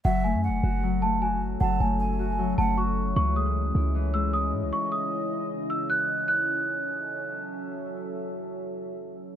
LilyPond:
<<
  \new Staff \with { instrumentName = "Celesta" } { \time 4/4 \key fis \dorian \tempo 4 = 154 fis''8 gis''4. r8 a''8 gis''8 r8 | fis''8 gis''4. r8 a''8 cis'''4 | cis'''8 dis'''4. r8 e'''8 dis'''8 r8 | cis'''8 dis'''4. r8 e'''8 fis'''4 |
fis'''2. r4 | r1 | }
  \new Staff \with { instrumentName = "Flute" } { \time 4/4 \key fis \dorian e''4 fis''2 r4 | a''4 gis''4. fis''8 r4 | r1 | r1 |
r1 | r1 | }
  \new Staff \with { instrumentName = "Ambient pad" } { \time 4/4 \key fis \dorian << { <fis a' e''>1~ | <fis a' e''>1 | <cis e' dis''>1~ | <cis e' dis''>1 |
<fis cis' a' e''>1~ | <fis cis' a' e''>1 | } \\ { cis'1~ | cis'1~ | cis'1~ | cis'1 |
r1 | r1 | } >> }
  \new Staff \with { instrumentName = "Harp" } { \time 4/4 \key fis \dorian fis8 a4 fis'8 fis8 a8 fis'4 | fis8 a4 fis'8 fis8 a8 fis'4 | e8 gis4 e'8 e8 gis8 e'4~ | e'4. r2 r8 |
r1 | r1 | }
  \new Staff \with { instrumentName = "808-style bass" } { \clef bass \time 4/4 \key fis \dorian fis,,8. fis,16. fis,,16. fis,,2~ fis,,8 | fis,,8 fis,,2 fis,,4. | cis,4. cis,2 gis,16 cis,16 | r1 |
r1 | r1 | }
>>